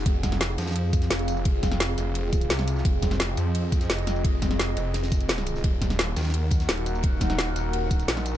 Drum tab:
RD |x---x---x---xxxxx---x---x---x---|x---x---x---x---x---x---x---x---|x---x---x---x---x---x---x---x---|x---x---x---x---x-x-x---x---x---|
HH |x---x-x-x---x---x---x-x-x-x-x---|x---x-x-x---x---x---x-x-x-x-x---|x---x-x-x---x---x---x-x-x-x-x---|x---x-x-x---x---x---x-x-x-x-x---|
TB |----x-------x-------x-x-----x-x-|----x-------x-------x-x-----x-x-|----x-------x-------x-x-----x-x-|----x-------x-------x-x-----x-x-|
SD |----o-o-o---oooo------o-o-------|----o-o-o---------------o-o---o-|----o-o-o-------------o-o---o---|----o-o-o-------o-o-----o-o---o-|
BD |o---o---------------o-----------|o---o---------------o-----------|o---o---------------o-----------|o---o---------------o-----------|

RD |x---x---x---xxxxx---x---x---x---|x---x---x---x---x---x---x---x---|
HH |x---x-x-x---x---x---x-x-x-x-x---|x---x-x-x---x---x---x-x-x-x-x---|
TB |----x-------x-------x-x-----x-x-|----x-------x-------x-x-----x---|
SD |----o-o-o---oooo------o-o-------|----o-o-o---------------o-o-----|
BD |o---o---------------o-----------|o---o---------------o-----------|